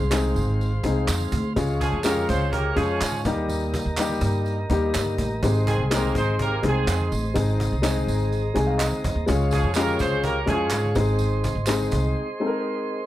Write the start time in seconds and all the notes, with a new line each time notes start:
Already playing: G#4 C5 F5 C6
0.00 C2, high conga
0.11 G#3 C4 D#4 G#4, cajon slap, clap, tambourine
0.23 cajon slap, high conga
0.35 G#1, cajon slap, tambourine, muted conga, low conga
0.46 high conga
0.61 cajon slap, tambourine
0.84 C2 G#3 C4 D#4 G#4, cajon bass, tambourine
1.07 F2, cajon slap, clap, tambourine, muted conga
1.20 cajon slap, high conga
1.32 D2, cajon bass, tambourine, low conga
1.56 C#2 G#3 C#4 F4 G#4 C#5 C#6, cajon bass, tambourine, muted conga, low conga
1.80 F3 C#4 G#4, cajon bass, tambourine
1.92 F2, high conga
2.04 G#3 A#3 C#4 F4 G4 G#4 A#4, cajon slap, clap, tambourine, muted conga
2.16 cajon slap, high conga
2.27 C#2 C4 G#4 C5, cajon bass, tambourine, muted conga, low conga
2.41 high conga
2.53 A#3 G4 A#4, cajon bass
2.76 F2 F3 G#3 C#4 F4 G#4, cajon bass, tambourine, muted conga
3.01 G#2, cajon slap, clap, tambourine, muted conga
3.12 high conga
3.25 D#2 G3 A#3 D#4 G4 A#4 D#5 A#5, cajon bass, tambourine, low conga
3.48 cajon slap, tambourine, muted conga, low conga
3.74 cajon bass, tambourine
3.85 D#2, high conga
3.97 G3 A#3 D#4 G4, cajon slap, clap, tambourine, muted conga
4.09 high conga
4.21 G2, cajon bass, tambourine, muted conga, low conga
4.33 high conga
4.45 cajon slap, tambourine, muted conga
4.70 D#2 G3 A#3 D#4 G4, cajon bass, tambourine
4.94 G2, cajon slap, clap, tambourine
5.05 cajon slap, high conga
5.18 A1, cajon bass, tambourine, muted conga, low conga
5.31 cajon slap
5.43 G#1 G#3 C4 D#4 G4 G#4 C5 C6, cajon bass, tambourine, muted conga, low conga
5.51 G#4
5.66 D#3 C4 G#4, cajon bass, tambourine, muted conga
5.78 C2, high conga
5.91 G#3 A#3 D#4 G4 G#4 A#4, cajon slap, clap, tambourine
5.97 C4
6.04 high conga
6.15 G#1 G#3 D#4 C5, cajon bass, tambourine, low conga
6.28 high conga
6.39 A#3 G4 A#4, cajon bass, muted conga
6.63 C2 G#3 C4 D#4 G#4, cajon bass
6.67 D#3 C4 G#4
6.87 F2, cajon slap, clap, tambourine, muted conga
7.00 high conga
7.11 A1, cajon slap, tambourine, muted conga, low conga
7.34 G#1 G#3 C4 D#4 G#4 A#5, cajon bass, tambourine, muted conga, low conga
7.60 cajon bass, tambourine, muted conga
7.72 C2, high conga
7.82 G#3 C4 D#4 G#4, cajon slap, clap, tambourine, muted conga
7.98 high conga
8.07 G#1, cajon slap, tambourine, muted conga, low conga
8.21 high conga
8.32 cajon slap, tambourine, muted conga
8.54 C2 G#3 C4 D#4 G#4 G#5, cajon bass, tambourine, muted conga
8.66 F5
8.78 D#5, cajon slap, clap, tambourine
8.92 cajon slap, high conga
9.04 F2, cajon bass, tambourine, muted conga, low conga
9.15 D#2
9.26 C#2 G#3 C#4 F4 G#4 C#5 F5 C#6, cajon bass, tambourine, muted conga, low conga
9.51 F3 C#4 G#4, cajon bass, tambourine, muted conga
9.64 F2, high conga
9.75 G#3 A#3 C#4 F4 G4 G#4 A#4, cajon slap, clap, tambourine
9.88 cajon slap, high conga
9.99 C#2 C4 G#4 C5, cajon bass, tambourine, low conga
10.12 high conga
10.23 A#3 G4 A#4, cajon bass, tambourine, muted conga
10.46 F2 F3 G#3 C#4 E4 G#4, cajon bass
10.53 F4
10.70 G#2, cajon slap, clap, tambourine, muted conga
10.85 high conga
10.95 G#1 G#3 C4 D#4 G#4 C5 D#5, cajon bass, tambourine, muted conga, low conga
11.00 C6
11.19 cajon slap, tambourine, muted conga, low conga
11.44 cajon bass, tambourine
11.55 G#1, high conga
11.66 G#3 C4 D#4 G#4, cajon slap, clap, tambourine
11.81 high conga
11.91 C2, cajon bass, tambourine, muted conga, low conga
12.04 high conga
12.40 G#3 C4 D#4 A4
12.46 A#4